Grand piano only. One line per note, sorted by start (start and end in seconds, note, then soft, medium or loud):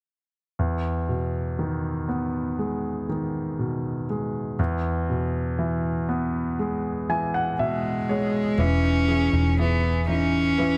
0.59 4.55 E2 soft
1.09 3.05 B2 soft
1.59 3.08 D#3 soft
2.09 4.05 B3 soft
2.59 4.08 G#3 soft
3.09 4.55 D#3 soft
3.59 4.56 B2 soft
4.10 4.58 G#3 soft
4.59 8.55 E2 soft
5.10 7.05 B2 soft
5.59 7.08 E3 soft
6.09 8.05 B3 soft
6.59 8.08 G#3 soft
7.09 8.55 E3 soft
7.09 7.33 G#5 soft
7.34 7.57 F#5 soft
7.59 8.56 B2 soft
7.59 8.06 E5 soft
8.09 8.58 G#3 soft
8.09 8.56 C#5 soft
8.59 9.08 E3 soft
9.10 9.58 E3 soft
9.59 10.08 E3 soft
10.09 10.58 E3 soft
10.59 10.78 E3 soft